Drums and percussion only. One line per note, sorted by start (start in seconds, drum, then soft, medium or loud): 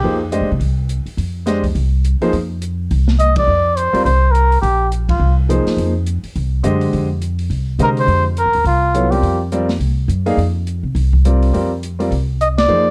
0.32 closed hi-hat soft
0.61 open hi-hat soft
0.89 closed hi-hat soft
1.06 open hi-hat soft
1.18 open hi-hat soft
1.47 snare soft
1.47 closed hi-hat soft
1.64 kick soft
1.64 open hi-hat soft
1.75 open hi-hat soft
2.04 closed hi-hat soft
2.22 open hi-hat soft
2.33 open hi-hat soft
2.62 closed hi-hat soft
2.91 open hi-hat soft
3.08 snare soft
3.19 closed hi-hat soft
3.36 kick medium
3.36 ride medium
3.77 closed hi-hat medium
3.95 open hi-hat soft
4.06 open hi-hat soft
4.35 closed hi-hat soft
4.52 open hi-hat soft
4.63 open hi-hat soft
4.92 closed hi-hat soft
5.09 kick medium
5.09 ride medium
5.50 closed hi-hat soft
5.67 snare soft
5.67 open hi-hat soft
5.78 open hi-hat soft
6.06 closed hi-hat soft
6.24 open hi-hat soft
6.35 open hi-hat soft
6.64 closed hi-hat soft
6.81 open hi-hat soft
6.93 open hi-hat soft
7.22 closed hi-hat soft
7.39 open hi-hat soft
7.51 open hi-hat soft
7.79 closed hi-hat soft
7.97 open hi-hat soft
8.08 open hi-hat soft
8.37 closed hi-hat soft
8.53 open hi-hat soft
8.65 open hi-hat soft
8.95 closed hi-hat soft
9.12 open hi-hat soft
9.23 open hi-hat soft
9.52 closed hi-hat soft
9.69 snare soft
9.69 open hi-hat soft
9.81 open hi-hat soft
10.09 closed hi-hat soft
10.26 open hi-hat soft
10.38 open hi-hat soft
10.67 closed hi-hat soft
10.96 open hi-hat soft
11.13 kick medium
11.25 closed hi-hat soft
11.42 open hi-hat soft
11.54 open hi-hat soft
11.83 closed hi-hat soft
12.00 open hi-hat soft
12.12 open hi-hat soft
12.41 closed hi-hat soft
12.58 snare medium
12.58 ride medium